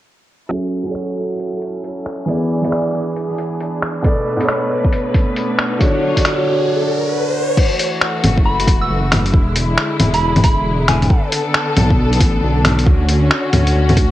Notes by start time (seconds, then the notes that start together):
0.49 F#3 C#4 A4, closed hi-hat
0.84 F#3 C#4, closed hi-hat
0.89 A4 C#5
0.95 finger snap, closed hi-hat
1.39 closed hi-hat
1.62 closed hi-hat
1.84 closed hi-hat
2.06 finger snap
2.26 E3 B3 D4 G#4, closed hi-hat
2.30 D5
2.62 E3 B3 G#4 D5, closed hi-hat
2.72 finger snap, closed hi-hat
3.16 closed hi-hat
3.38 closed hi-hat
3.60 closed hi-hat
3.82 finger snap
4.02 B2 A3 B3 A4 B4, kick, closed hi-hat, riser
4.06 D5
4.37 B2 B3, closed hi-hat
4.42 A4 C#5
4.48 finger snap, closed hi-hat
4.85 kick
4.93 closed hi-hat
5.14 kick, closed hi-hat
5.37 closed hi-hat
5.59 finger snap
5.79 D3 F#3 D4 F#4 C#5, kick, closed hi-hat
5.83 C#5
6.15 D3 D4 F#4 C#5, kick, closed hi-hat
6.25 finger snap, closed hi-hat
7.57 E3 A3 F#4, kick, crash
7.79 closed hi-hat
8.01 finger snap
8.24 F#1, closed hi-hat, low bongo
8.38 kick
8.45 F#1 B5
8.60 closed hi-hat
8.67 E1, kick, closed hi-hat
8.81 E6
8.90 F#1
9.12 finger snap, closed hi-hat, low bongo
9.26 closed hi-hat
9.33 E1 D3 G#3 E4, kick
9.56 closed hi-hat
9.78 finger snap
10.00 E1, closed hi-hat, low bongo
10.14 B5, closed hi-hat
10.22 E1
10.36 closed hi-hat, low bongo
10.44 B5, kick, closed hi-hat
10.88 G#5, finger snap, closed hi-hat, low bongo
11.02 closed hi-hat, low bongo
11.10 B3 A4, kick
11.32 closed hi-hat
11.54 finger snap
11.77 B1, closed hi-hat, low bongo
11.90 kick
11.99 B1
12.13 closed hi-hat
12.20 A1, kick, closed hi-hat
12.43 B1
12.65 finger snap, closed hi-hat, low bongo
12.79 closed hi-hat
12.86 D2 C#4 F#4, kick
13.09 closed hi-hat
13.31 finger snap
13.53 D2, closed hi-hat, low bongo
13.67 closed hi-hat
13.75 D2
13.89 closed hi-hat, low bongo
13.97 kick, closed hi-hat